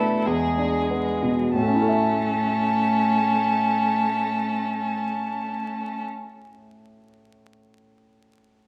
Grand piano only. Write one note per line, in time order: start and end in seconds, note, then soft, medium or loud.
0.00 0.22 E2 soft
0.00 0.29 B2 soft
0.00 0.29 A3 soft
0.00 0.29 D4 soft
0.00 0.29 E4 soft
0.00 0.26 B4 soft
0.26 1.51 E2 soft
0.58 1.10 D4 soft
0.91 1.42 B3 soft
1.23 1.54 B2 soft
1.54 6.45 A2 soft
1.61 6.52 A3 soft
1.68 6.59 C#4 soft
1.75 6.66 E4 soft
1.82 6.73 A4 soft
1.89 6.80 E5 soft